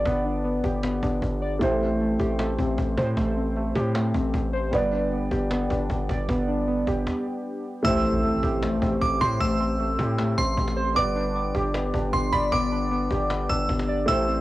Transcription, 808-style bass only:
0.05 G1
0.64 G1
1.03 G1
1.22 G1
1.61 A1
2.20 A1
2.59 A1
2.78 A1
2.98 A2
3.17 A1
3.75 A2
4.14 A1
4.34 A1
4.73 G1
5.31 G1
5.70 G1
5.90 G1
6.09 G1
6.29 G1
6.87 G1
7.85 A1
8.43 A1
8.82 A1
9.01 A1
9.21 A2
9.40 A1
9.99 A2
10.38 A1
10.57 A1
10.96 G1
11.55 G1
11.94 G1
12.13 G1
12.33 G1
12.52 G1
13.11 G1
13.50 G1
13.69 G1
14.08 A1

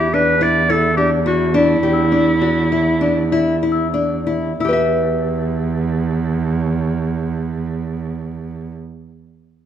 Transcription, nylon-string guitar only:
0.14 D4
0.41 E4
0.70 E4
0.98 D4
1.26 E4
1.54 D4
1.83 G4
2.12 D4
2.41 F#4
2.72 E4
3.01 D4
3.32 E4
3.63 E4
3.94 D4
4.27 E4
4.60 E4
4.65 G4 B4
4.73 E5

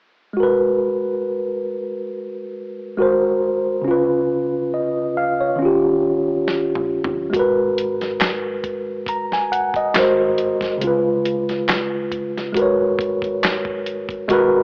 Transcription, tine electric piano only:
0.33 G#3 F#4
0.40 A#4 B4
2.97 G#3 F#4 A#4
3.02 C5
3.82 C#3 C#4
3.88 F4 B4
4.74 D#5
5.17 F5
5.41 C#5
5.56 D#3 C#4
5.62 F4 G4
7.30 G#3 F#4
7.36 A#4 B4
9.09 A#5
9.33 G#5
9.52 F#5
9.76 D#5
9.94 G#3 F#4 A#4
9.99 C5
10.78 C#3 G#3
10.84 F4 B4
12.52 G#3 F#4
12.57 A#4 B4
12.62 C#5
14.28 G#3 F#4 A#4
14.33 B4

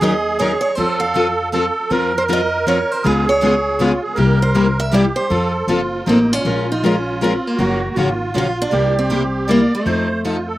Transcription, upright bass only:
Already playing: D#2
0.78 F2
1.91 F2
3.05 C#2
4.17 C2
5.30 F2
5.67 F#1
6.07 A1
6.45 A#1
7.59 F#1
7.97 G#1
8.35 A#1
8.73 C2
9.86 F2

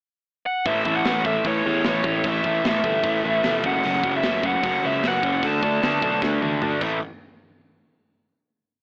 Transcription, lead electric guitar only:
0.46 F#5
0.66 E5
0.96 F#5
1.25 E5
1.47 C#5
1.87 C#5
2.28 E5
2.69 E5
3.66 F#5
4.17 E5
4.47 F#5
4.86 E5
5.07 F#5
5.47 A5

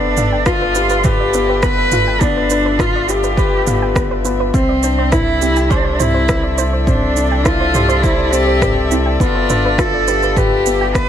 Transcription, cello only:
Already playing: D4
0.47 F4
1.05 G4
1.63 B4
2.22 D4
2.81 F4
3.10 G4
4.54 C4
5.12 E4
5.70 D4
5.99 E4
6.88 D4
7.45 F4
8.03 E4
8.33 G4
9.21 F4
9.79 A4
10.38 G4
10.95 B4

